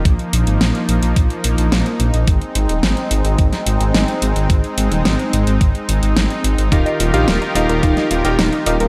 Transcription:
<<
  \new Staff \with { instrumentName = "Electric grand piano" } { \time 4/4 \key aes \lydian \tempo 4 = 108 r1 | r1 | r1 | <ees' f' g' bes' f''>8. <ees' f' g' bes' f''>8. <ees' f' g' bes' f''>8 <ees' f' g' bes' f''>8. <ees' f' g' bes' g''>16 r8 <ees' f' g' bes' f''>16 r16 | }
  \new Staff \with { instrumentName = "Synth arpeggio sound" } { \time 4/4 \key aes \lydian r1 | r1 | r1 | ees'16 ees''16 f'16 g'16 ees'16 ees'16 ees''16 bes'16 ees'16 ees''16 f'16 g'16 ees'16 ees'16 ees''16 bes'16 | }
  \new Staff \with { instrumentName = "Supersaw synth" } { \time 4/4 \key aes \lydian << { <f bes>1 | <aes c'>1~ | <aes c'>1 | <ees f' g' bes'>1 | } \\ { ees'1~ | ees'1~ | ees'1~ | ees'1 | } >> }
  \new Staff \with { instrumentName = "Detuned saw bass" } { \clef bass \time 4/4 \key aes \lydian bes,,16 r16 bes,,16 aes,,16 bes,,16 r16 bes,,16 bes,,16 bes,,16 r16 bes,,16 bes,,16 bes,,16 r16 bes,,16 bes,,16 | aes,,16 r16 aes,,16 ees,,16 aes,,16 r16 aes,,16 aes,,16 aes,,16 r16 aes,,16 aes,,16 aes,,16 r16 aes,,16 aes,,16 | aes,,16 r16 aes,,16 ees,,16 aes,,16 r16 aes,,16 aes,,16 aes,,16 r16 aes,,16 aes,,16 aes,,16 r16 aes,,16 aes,,16 | ees,,16 r16 ees,,16 bes,,16 ees,,16 r16 ees,,16 ees,,16 ees,,16 r16 ees,,16 ees,,16 ees,,16 r16 ees,,16 ees,,16 | }
  \new DrumStaff \with { instrumentName = "Drums" } \drummode { \time 4/4 <hh bd>16 hh16 hh16 hh16 <hh sn>16 hh16 hh16 hh16 <hh bd>16 hh16 hh16 hh16 <hh sn>16 hh16 hh16 hh16 | <hh bd>16 hh16 hh16 hh16 <hh sn>16 hh16 hh16 hh16 <hh bd>16 <hh sn>16 hh16 hh16 <hh sn>16 hh16 hh16 hh16 | <hh bd>16 hh16 hh16 hh16 <hh sn>16 hh16 hh16 hh16 <hh bd>16 hh16 hh16 hh16 <hh sn>16 hh16 hh16 hh16 | <hh bd>16 hh16 hh16 hh16 <hh sn>16 hh16 hh16 hh16 <hh bd>16 <hh sn>16 hh16 hh16 <hh sn>16 hh16 hh16 hh16 | }
>>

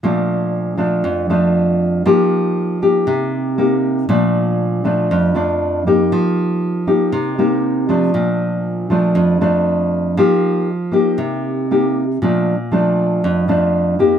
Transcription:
\new Staff \with { instrumentName = "Nylon-string guitar" } { \time 4/4 \key bes \major \tempo 4 = 118 << { <f a d'>4. <f a d'>4 <f a d'>4. | <bes ees' g'>4. <bes ees' g'>4. <bes ees' g'>4 | <f a d'>4. <f a d'>4 <f a d'>4 <bes ees' g'>8~ | <bes ees' g'>4. <bes ees' g'>4 <bes ees' g'>4 <f a d'>8~ |
<f a d'>4. <f a d'>4 <f a d'>4. | <bes ees' g'>4 r8 <bes ees' g'>4. <bes ees' g'>8 r8 | <f a d'>8 r8 <f a d'>4. <f a d'>4 <bes ees' g'>8 | } \\ { bes,2 f,2 | f2 c2 | bes,2 f,2 | f2 c2 |
bes,2 f,2 | f2 c2 | bes,2 f,2 | } >> }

